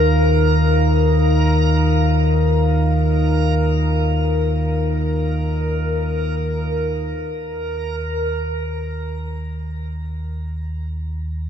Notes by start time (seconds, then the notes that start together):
Already playing: D#2 D#3 D#4 A#4 F5
7.16 D#2 D#3